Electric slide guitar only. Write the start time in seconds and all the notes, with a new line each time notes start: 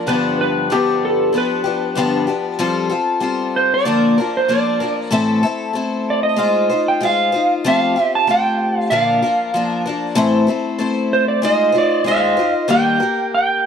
0.08 B4
0.41 B4
0.72 G4
1.05 A4
1.38 B4
3.56 C5
3.74 D5
4.37 C5
4.50 D5
6.10 D5
6.23 D#5
6.88 G5
7.05 F5
7.68 F5
8.15 A5
8.31 G5
8.90 F5
11.13 C5
11.28 D5
11.45 D#5
11.78 D5
12.08 D#5 F5
12.71 G5
13.34 G5